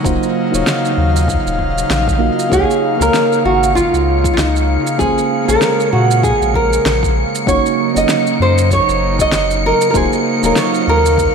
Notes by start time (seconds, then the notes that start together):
Already playing: C#3 F#3 D#4
0.03 D#1 A#3 D#4 F4 F#4 C5 F5, kick, shaker
0.23 shaker
0.51 D#1 A#3 D#4 F4 F#4, shaker
0.55 C#5
0.67 snare, shaker
0.85 shaker
0.97 D#2
1.16 shaker
1.28 kick, shaker
1.46 D#1, shaker
1.59 kick
1.78 shaker
1.90 A#1, snare, shaker
2.08 kick, shaker
2.18 A#3 D#4 F4 F#4 D#5
2.39 shaker
2.49 C#2 A#3 D#4 F4 G#4 C#5 C#7, kick, shaker
2.71 shaker
2.97 C#2 A#3 D#4 G#4 F5
3.01 A#4 C#5, shaker
3.14 snare, shaker
3.33 shaker
3.45 G#1 F#4
3.63 shaker
3.75 F4, kick, shaker
3.93 C#2, shaker
4.24 kick, shaker
4.34 C#2 D#4 F4
4.38 snare, shaker
4.56 shaker
4.87 shaker
4.98 A#1 G#3 A#3 C#4 F4 G#4 C5, kick, shaker
5.18 shaker
5.45 A#1 A#3 C#4 G#4 A#4 F5, shaker
5.49 C#5
5.62 snare, shaker
5.80 shaker
5.93 A#2 F#4
6.11 shaker
6.23 G#4, kick, shaker
6.41 A#1, shaker
6.54 A#4, kick
6.73 shaker
6.85 A#1, snare, shaker
7.03 kick, shaker
7.35 shaker
7.46 F#1 F#3 A#3 C#4 D#4 F#4 C#5, kick, shaker
7.66 shaker
7.93 F#1 A#3 C#4 D#4 F#4, shaker
7.98 D#5
8.09 snare, shaker
8.27 shaker
8.40 F#2 C5
8.58 shaker
8.71 C#5, kick, shaker
8.88 F#1, shaker
9.19 D#5, kick, shaker
9.32 F#1, snare, shaker
9.51 shaker
9.66 A#4
9.81 shaker
9.90 D#1 A#3 D#4 A#4, kick
9.94 C#3 F#3 D#4 F4 F#4 G#4 C5 F5, shaker
10.13 shaker
10.42 D#1 A#3 D#4 F4 F#4 A#4, shaker
10.46 C#5
10.56 C#5, snare, shaker
10.74 shaker
10.87 D#2 A#4
11.06 shaker
11.18 kick, shaker